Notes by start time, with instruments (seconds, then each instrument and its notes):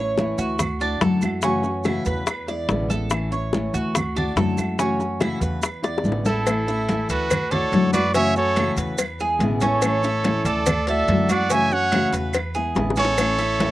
Already playing: upright bass A1, nylon-string guitar E4, cuban tres C#5
0.00 nylon-string guitar A3 C#4
0.17 nylon-string guitar E3 A3 C#4 E4, high bongo, high conga, maracas
0.38 upright bass D2, cuban tres F#4, high conga, maracas
0.59 muted nylon-string guitar stroke, high bongo, high conga, low conga, claves, maracas
0.80 nylon-string guitar A3 E4 F#4, cuban tres D4, high conga, maracas
1.01 upright bass F#2, nylon-string guitar D3 F#3 A3 E4 F#4, cuban tres A4, high bongo, low bongo, high conga, maracas
1.22 nylon-string guitar A3 E4 F#4, high conga, claves, maracas
1.42 nylon-string guitar C#3 E3 A3 C#4 F#4, cuban tres C#4, high bongo, high conga, maracas
1.63 nylon-string guitar A3 C#4 F#4, high bongo, high conga, maracas
1.84 nylon-string guitar C#3 E3 A3 C#4 F#4, cuban tres E4, high bongo, high conga, claves, maracas
2.05 upright bass E2, cuban tres B4, high bongo, high conga, maracas
2.27 muted nylon-string guitar stroke, high bongo, high conga, claves, maracas
2.48 nylon-string guitar G#3 B3 E4, cuban tres D5, high bongo, high conga, maracas
2.69 upright bass A1, nylon-string guitar B2 D3 G#3 B3 E4, high bongo, low bongo, high conga, maracas
2.89 nylon-string guitar G#3 B3 E4, cuban tres A4, high conga, maracas
3.10 nylon-string guitar E3 A3 C#4 E4, high bongo, claves, maracas
3.32 nylon-string guitar A3 C#4 E4, cuban tres C#5, high conga, maracas
3.53 nylon-string guitar E3 A3 C#4 E4, high bongo, high conga, maracas
3.74 upright bass D2, cuban tres F#4, high conga, maracas
3.95 muted nylon-string guitar stroke, high bongo, high conga, low conga, claves, maracas
4.16 nylon-string guitar A3 E4 F#4, cuban tres D4, high conga, low conga, maracas
4.36 upright bass F#2, nylon-string guitar D3 F#3 A3 E4 F#4, cuban tres A4, high bongo, low bongo, high conga, maracas
4.58 nylon-string guitar A3 E4 F#4, high conga, claves, maracas
4.78 nylon-string guitar C#3 E3 A3 C#4 F#4, cuban tres C#4, high bongo, high conga, maracas
4.99 nylon-string guitar A3 C#4 F#4, high bongo, high conga, maracas
5.19 nylon-string guitar C#3 E3 A3 C#4 F#4, cuban tres E4, high bongo, high conga, claves, maracas
5.41 upright bass E2, cuban tres B4, high bongo, high conga, maracas
5.62 muted nylon-string guitar stroke, high bongo, high conga, claves, maracas
5.82 nylon-string guitar G#3 B3 E4, cuban tres D5, high bongo, high conga, maracas
5.98 high bongo
6.04 upright bass A1, nylon-string guitar B2 D3 G#3 B3 E4, high conga, maracas
6.12 low bongo
6.25 nylon-string guitar G#3 B3 E4, trumpet E4 A4, cuban tres A4, low bongo, high conga, maracas
6.46 nylon-string guitar E3 A3 C#4 E4, cowbell, high conga, claves, maracas
6.68 nylon-string guitar A3 C#4 E4, cuban tres E4, high conga, maracas
6.89 nylon-string guitar E3 A3 C#4 E4, cowbell, high conga, maracas
7.09 upright bass D2, trumpet F#4 B4, cuban tres A4, cowbell, high conga, maracas
7.30 muted nylon-string guitar stroke, cowbell, high conga, low conga, claves, maracas
7.51 nylon-string guitar A3 E4 F#4, cuban tres D4, trumpet A4 C#5, cowbell, high conga, low conga, maracas
7.72 upright bass F#2, nylon-string guitar D3 F#3 A3 E4 F#4, cowbell, high conga, maracas
7.93 nylon-string guitar A3 E4 F#4, cuban tres F#4, trumpet B4 D5, cowbell, high conga, claves, maracas
8.14 nylon-string guitar C#3 E3 A3 C#4 F#4, cuban tres C#4, trumpet C#5 E5, cowbell, high conga, maracas
8.36 nylon-string guitar A3 C#4 F#4, trumpet A4 C#5, high conga, maracas
8.56 nylon-string guitar C#3 E3 A3 C#4 F#4, cuban tres E4, cowbell, high conga, claves, maracas
8.77 upright bass E2, cuban tres B4, cowbell, high conga, maracas
8.98 muted nylon-string guitar stroke, cowbell, high conga, claves, maracas
9.20 nylon-string guitar G#3 B3 E4, cuban tres G#4, high conga, maracas
9.39 upright bass A1, nylon-string guitar B2 D3 G#3 B3, cowbell, high conga, maracas
9.43 nylon-string guitar E4
9.61 nylon-string guitar G#3 B3 E4, cuban tres C#4, trumpet A4 C#5, cowbell, high conga, maracas
9.82 nylon-string guitar E3 A3 C#4 E4, cowbell, high conga, claves, maracas
10.03 nylon-string guitar A3 C#4 E4, cuban tres E4, high conga, maracas
10.24 nylon-string guitar E3 A3 C#4 E4, cowbell, high conga, maracas
10.45 upright bass D2, trumpet A4 D5, cuban tres A4, cowbell, maracas
10.66 muted nylon-string guitar stroke, cowbell, high conga, low conga, claves, maracas
10.87 nylon-string guitar A3 E4 F#4, trumpet A4 E5, cuban tres D5, cowbell, high conga, maracas
11.07 upright bass F#2, nylon-string guitar D3 F#3 A3 E4 F#4, cowbell, high conga, maracas
11.29 nylon-string guitar A3 E4 F#4, cuban tres F#4, trumpet D5 F#5, cowbell, high conga, claves, maracas
11.50 nylon-string guitar C#3 E3 A3 C#4 F#4, cuban tres C#4, trumpet E5 G#5, cowbell, maracas
11.71 nylon-string guitar A3 C#4 F#4, trumpet C#5 F#5, high conga, maracas
11.92 nylon-string guitar C#3 E3 A3 C#4 F#4, cuban tres E4, cowbell, high conga, claves, maracas
12.12 upright bass E2, cuban tres B4, cowbell, high conga, maracas
12.33 muted nylon-string guitar stroke, cowbell, high conga, claves, maracas
12.54 nylon-string guitar G#3 B3 E4, cuban tres G#4, high conga, maracas
12.75 upright bass A1, nylon-string guitar B2 D3 G#3 B3 E4, cowbell, high bongo, high conga, maracas
12.90 high bongo
12.96 nylon-string guitar G#3 B3 E4, cuban tres C#4, trumpet A4 C#5, cowbell, high conga, maracas
13.05 low bongo
13.18 nylon-string guitar E3 A3 C#4 E4, cowbell, claves, maracas
13.38 nylon-string guitar A3 C#4 E4, cuban tres E4, high conga, maracas
13.59 nylon-string guitar E3 A3 C#4 E4, cowbell, high conga, maracas